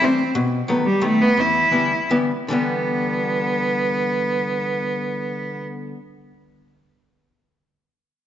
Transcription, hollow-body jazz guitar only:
0.01 E3 G3 A3 C4
0.35 B2
0.68 D#3 F#3 A3 B3
1.01 D#3 F#3 A3 B3
1.37 E2
1.71 D3 E3 G3 B3
2.10 D3 E3 G3 B3
2.48 D3 E3 G3
2.52 B3

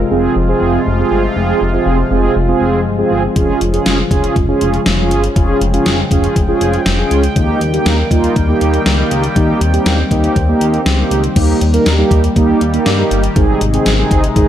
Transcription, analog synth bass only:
0.11 F1
0.36 F1
0.61 F1
0.86 F1
1.11 G1
1.36 F1
1.61 F1
1.86 F1
2.11 F1
2.36 F1
2.61 F1
2.86 G1
3.11 G1
3.36 F1
3.61 F1
3.86 F1
4.11 F1
4.36 F1
4.61 F1
4.86 F1
5.11 G1
5.36 F1
5.61 F1
5.86 F1
6.11 F1
6.36 F1
6.61 F1
6.86 F1
7.11 C#2
7.36 D#2
7.61 D#2
7.86 D#2
8.11 D#2
8.36 D#2
8.61 D#2
8.86 C#2
9.11 C#2
9.36 D#2
9.61 D#2
9.86 D#2
10.11 D#2
10.36 D#2
10.61 D#2
10.86 C#2
11.11 C#2
11.36 D#2
11.61 D#2
11.86 D#2
12.11 D#2
12.36 D#2
12.61 D#2
12.86 G2
13.11 G1
13.36 G#1
13.61 G#1
13.86 G#1
14.11 G#1
14.36 G#1

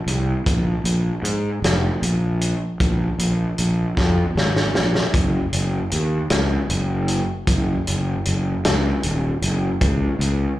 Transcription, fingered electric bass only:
0.07 C2
0.46 A#1
0.84 A#1
1.22 G#2
1.62 F1
2.02 A#1
2.81 A#1
3.19 A#1
3.59 A#1
3.97 F2
4.35 G#1
4.74 A#1
5.14 F#1
5.53 F#1
5.92 D#2
6.31 C#2
6.69 F#1
7.48 F#1
7.88 F#1
8.27 F#1
8.66 C#2
9.04 D#1
9.42 F#1
9.82 C#2
10.19 C#2

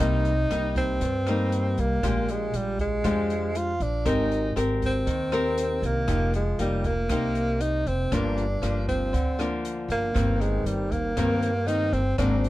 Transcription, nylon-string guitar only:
0.00 C3 G3 A#3 D#4
0.50 G3 A#3 D#4
1.02 G2
1.28 G3 A#3 D#4
2.03 A#2 G#3 D4 G4
3.05 F3 G#3 D4 G4
4.05 G#3 C4 G4 A#4
4.56 C4 G4 A#4
5.07 D#3
5.32 C4 G4 A#4
6.07 F3 A#3 D#4 G4
6.59 A#3 D#4 G4
7.11 C3 A#3 D#4 G4
8.12 G2 F3 A#3 D4
8.62 F3 A#3 D4
9.13 D3
9.39 F3 A#3 D4
10.14 G2 D#3 A#3 C4
11.17 G2 D#3 A#3 C4
11.67 D#3 A#3 C4
12.18 G#2 D#3 A#3 C4

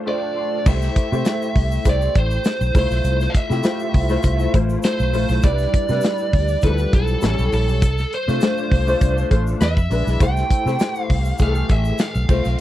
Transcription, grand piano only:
Already playing: A3 D4 F4 C5 F5
0.06 A3 D4 F4 C5 G5
0.22 A5
0.36 C6
0.66 A3 E4 G4 C5
1.12 A3 E4 G4 C5
1.85 A3 E4 G4 C5
2.74 A3 E4 F4 C5
3.49 A3 E4 F4 G4
3.63 A3 E4 F4 C5
4.09 A3 E4 F4 C5
4.53 A3 E4 F4 C5
5.13 A3 E4 F4 C5
5.43 G3 D4 E4 B4
5.89 G3 D4 E4 B4
6.62 F3 D4 E4 A4
6.69 G3
7.21 G3 C#4 E4 A4
8.27 A3 D4 F4 C5
8.41 A3 D4 F4 C5
8.87 A3 D4 F4 C5
9.30 A3 D4 F4 C5
9.90 G#3 D4 E4 B4
10.20 A3 E4 G4 C5
10.66 A3 E4 G4 C5
11.39 E3 A3 G4 G#4
11.47 A4
12.28 A3 C4 F4 C5

